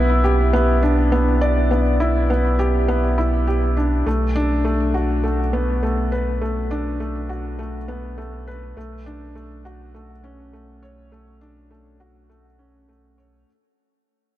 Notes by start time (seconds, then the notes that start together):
Already playing: B1 B3 E4
0.24 G4
0.53 B3
0.83 D4
1.12 B3
1.41 D5
1.71 B3
2.00 E4
2.30 B3
2.59 G4
2.88 B3
3.18 E4
3.47 G4
3.77 D4
4.06 B1 A3
4.36 D4
4.65 A3
4.94 F#4
5.24 A3
5.53 B3
5.83 A3
6.12 B4
6.41 A3
6.71 D4
7.00 A3
7.29 F#4
7.59 A3
7.88 B3
8.18 A3
8.47 B4
8.77 B1 A3
9.06 D4
9.35 A3
9.65 F#4
9.95 A3
10.24 C#4
10.53 A3
10.83 C#5
11.12 A3
11.41 D4
11.71 A3
12.00 F#4
12.29 A3
12.59 C#4
12.88 A3
13.18 C#5